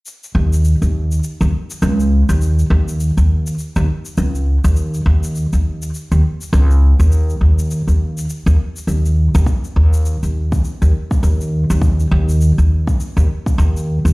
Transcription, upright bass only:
X:1
M:4/4
L:1/16
Q:"Swing 16ths" 1/4=102
K:Dblyd
V:1 name="Upright bass" clef=bass
z2 E,,3 E,,3 z E,, z2 D,,3 E,,- | E,,2 E,,3 E,,3 z E,, z2 D,,3 E,,- | E,,2 E,,3 E,,3 z E,, z2 D,,3 E,,- | E,,2 E,,3 E,,3 z E,, z2 E,,3 E,, |
z2 E,,3 E,,3 z E,, z2 E,,3 E,,- | E,,2 E,,3 E,,3 z E,, z2 E,,3 E,, |]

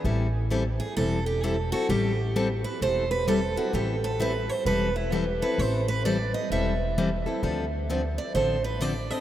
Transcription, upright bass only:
X:1
M:4/4
L:1/8
Q:"Swing" 1/4=130
K:Am
V:1 name="Upright bass" clef=bass
A,,,4 E,,,4 | A,,,4 E,,,4 | A,,,4 E,,,4 | A,,,4 E,,,4 |
D,,4 A,,,4 |]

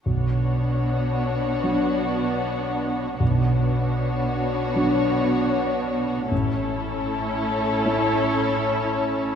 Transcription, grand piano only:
X:1
M:4/4
L:1/8
Q:1/4=77
K:Bdor
V:1 name="Grand piano"
B,,,4 [F,Dc]4 | B,,,4 [F,Dc]4 | A,,,4 [A,Ec]4 |]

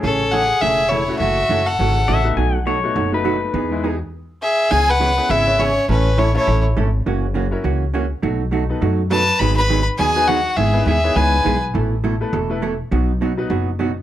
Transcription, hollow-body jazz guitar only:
X:1
M:4/4
L:1/8
Q:"Swing" 1/4=205
K:E
V:1 name="Hollow-body jazz guitar"
[C,E,A,CG] z [C,E,A,CG] z [C,E,A,CG] z [C,E,A,CG] z | [C,E,A,CF] z [C,E,A,CF] z [C,E,A,CF] z [C,E,A,CF] z | [B,,F,A,DF] z [B,,F,A,DF] z [B,,F,A,DF] z [B,,F,A,DF] z | [E,B,DG] z [E,B,DG] z4 z |
[C,E,B,CG] z [C,E,B,CG] z [C,E,B,CG] z [C,E,B,CG] z | [E,A,CEA] z [E,A,CEA] z [E,A,CEA] z [E,A,CEA] z | [C,E,^A,CF] z [C,E,A,CF] z [C,E,A,CF] z [C,E,A,CF] z | [B,,F,A,DF] z [B,,F,A,DF] z [B,,F,A,DF] z [B,,F,A,DF] z |
[D,F,B,DG] z [D,F,B,DG] z [D,F,B,DG] z [D,F,B,DG] z | [D,G,B,EG] z [D,G,B,EG] z [D,G,B,EG] z [D,G,B,EG] z | [B,,E,A,EA] z [B,,E,A,EA] z [B,,E,A,EA] z [B,,E,A,EA] z | [B,,F,B,DF] z [B,,F,B,DF] z [B,,F,B,DF] z [B,,F,B,DF] z |]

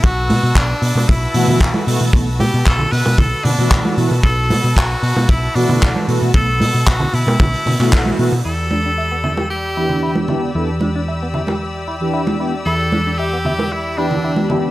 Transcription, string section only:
X:1
M:4/4
L:1/8
Q:1/4=114
K:Em
V:1 name="String section"
[FBae']8- | [FBae']8- | [FBae']8- | [FBae']8 |
[Gdbe']8- | [Gdbe']8- | [Gdbe']8 |]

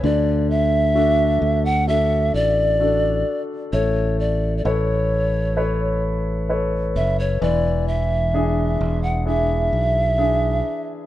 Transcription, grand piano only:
X:1
M:4/4
L:1/8
Q:1/4=65
K:Dlyd
V:1 name="Grand piano"
D,2 [DFA]2 [DFA]2 [DFA]2 | A,2 [ABc]2 [ABc]2 [ABc]2 | E,2 [DEG]2 [DEG]2 [DEG]2 |]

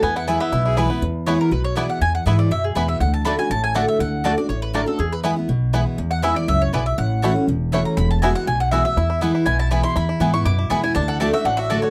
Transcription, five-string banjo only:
X:1
M:4/4
L:1/8
Q:1/4=242
K:Emix
V:1 name="Five-string banjo"
B, E E B, E E E B, | z2 [B,E] z3 [B,E] z | z2 [B,E] z3 [B,E] z | z2 [A,DF] z3 [A,DF] z |
z2 [A,DF] z3 [A,DF] z | z2 [B,E] z3 [B,E] z | z2 [B,E] z3 [B,E] z | z2 [A,CE] z3 [A,CE] z |
z2 [B,E] z3 [B,E] z | E E B, E E E E E | E E B, E E E E E | D A A, F D F A F |]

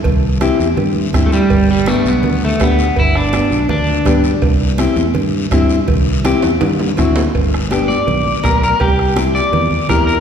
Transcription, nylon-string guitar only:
X:1
M:4/4
L:1/8
Q:1/4=164
K:G
V:1 name="Nylon-string guitar"
z2 [CEG] z3 [CEG] z | z2 [B,DG] z3 [B,DG] z | z2 [B,DG] z3 [B,DG] z | z2 [CEG] z3 [CEG] z |
z2 [CEG] z3 [CEF] z | z2 [B,DG] z3 [B,DG] z | z2 [CEG] z3 [CEG] z |]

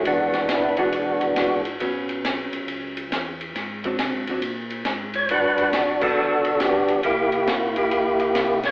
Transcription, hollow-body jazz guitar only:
X:1
M:4/4
L:1/8
Q:"Swing" 1/4=138
K:Emix
V:1 name="Hollow-body jazz guitar"
[E,G,DF]2 z [E,G,DF]3 [E,G,DF] z | [F,B,C]4- [F,B,C] z3 | z [F,^B,D]2 [F,B,D] z4 | z3 [F,B,D]3 [F,B,D] z |
[_B,E]4- [B,E] z3 |]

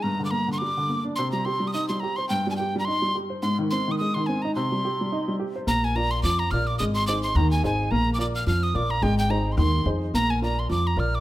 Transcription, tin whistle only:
X:1
M:4/4
L:1/16
Q:"Swing" 1/4=214
K:Cm
V:1 name="Tin whistle"
b3 d' b3 c' d'6 z2 | c'2 b2 c'3 e' e'2 c'2 b2 c'2 | g3 a g3 b c'6 z2 | c'2 z2 c'3 e' e'2 c'2 a2 b2 |
c'12 z4 | b2 a2 b2 c'2 d'2 b2 f'2 d'2 | e'2 c'2 d'2 c'2 b2 a2 a4 | b3 d' d'2 f'2 f'2 e'2 d'2 b2 |
g2 g2 b3 c' c'6 z2 | b2 a2 b2 c'2 d'2 b2 f'2 d'2 |]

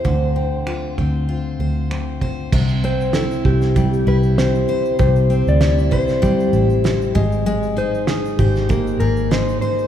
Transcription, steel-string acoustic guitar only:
X:1
M:4/4
L:1/8
Q:"Swing 16ths" 1/4=97
K:C
V:1 name="Steel-string acoustic guitar"
[D,c] C F C F c C c | C, C E2 G, E C c | C, C E c G, E C _A, | _A, _E2 c _B, _A E c |]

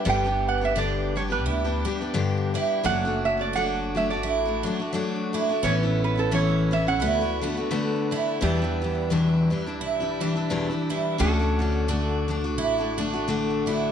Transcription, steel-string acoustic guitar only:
X:1
M:4/4
L:1/16
Q:"Swing" 1/4=86
K:D
V:1 name="Steel-string acoustic guitar"
[G,,D,G,B,DG] [G,B,DG]2 [G,B,DG] [G,,D,G,B,DG]2 [G,B,DG] [G,B,DG]2 [G,B,DG] [G,B,DG] [G,B,DG] [G,,D,G,B,DG]2 [G,B,DG]2 | [F,A,DF] [A,DF]2 [A,DF] [F,A,DF]2 [F,A,DF] [A,DF]2 [A,DF] [F,A,DF] [A,DF] [F,A,DF]2 [F,A,DF] [A,DF] | [A,,E,B,CE] [B,CE]2 [B,CE] [A,,E,B,CE]2 [E,B,CE] [B,CE] [D,A,B,F] [A,B,F] [D,A,B,F] [A,B,F] [D,A,B,F]2 [D,A,B,F]2 | [E,,B,,E,G,DE] [E,G,DE] [E,G,DE]2 [E,,B,,E,G,DE]2 [E,G,DE] [E,G,DE]2 [E,G,DE] [E,G,DE] [E,G,DE] [E,,B,,E,G,DE] [E,G,DE] [E,G,DE]2 |
[D,A,DF] [A,DF] [D,A,DF]2 [D,A,DF]2 [D,A,DF] [A,DF]2 [A,DF] [D,A,DF] [A,DF] [D,A,DF]2 [D,A,DF]2 |]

